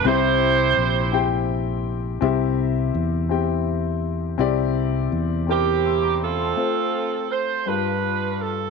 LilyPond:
<<
  \new Staff \with { instrumentName = "Saxophone section" } { \time 6/8 \key c \mixolydian \tempo 4. = 55 << { c''2 r4 | r2. | r4. g'4 a'8~ | a'4 c''8 b'4 a'8 | } \\ { <e' g'>2 r4 | r2. | r4. <c' e'>4 <c' f'>8~ | <c' f'>4 r8 <d' f'>4. | } >> }
  \new Staff \with { instrumentName = "Grand piano" } { \time 6/8 \key c \mixolydian << { c4. r4. | c4. r4. | c4. r8 <c''' e'''>16 <bes'' d'''>8 <a'' c'''>16~ | <a'' c'''>16 r4 r16 g,4. | } \\ { <c' e' g' e''>4~ <c' e' g' e''>16 r16 <c' e' g' g''>4~ <c' e' g' g''>16 r16 | <c' e' g' e''>4~ <c' e' g' e''>16 r16 <c' e' g' g''>4~ <c' e' g' g''>16 r16 | <c' e' g' d''>4~ <c' e' g' d''>16 r16 <c' e' g' bes'>4~ <c' e' g' bes'>16 r16 | <a c' f' c''>4~ <a c' f' c''>16 r16 <g d' f' bes' b'>4~ <g d' f' bes' b'>16 r16 | } >> }
  \new Staff \with { instrumentName = "Fingered electric bass" } { \clef bass \time 6/8 \key c \mixolydian c,4 bes,,2 | c,4 e,2 | c,4 e,2 | r2. | }
>>